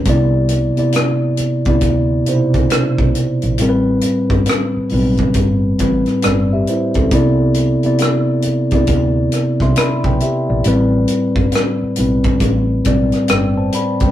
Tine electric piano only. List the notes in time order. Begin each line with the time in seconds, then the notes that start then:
0.06 C3 B3 E4 D5
0.76 C3 B3 E4 D5
1.65 C3 B3 E4 D5
2.25 B2 C3 D#4 C5
2.35 E4
3.59 A2 G3 C4 A#4
3.69 B4
4.90 A2 G3 C4 B4
5.78 A2 G3 C4 B4
6.25 D5
6.53 G4 E5
6.69 E4 C5
6.97 C4 A4
7.12 C3 B3 E4 D5
7.83 C3 B3 E4 D5
8.72 C3 B3 E4 D5
9.62 E5 C6
9.78 D5 B5
10.06 B4 G5
10.22 G4 E5
10.49 D5
10.64 A2 G3 C4 B4
11.96 A2 G3 C4 B4
12.84 A2 G3 C4 D5
13.30 B4 G5
13.57 C5 A5
13.75 D5 B5
14.03 B4 G5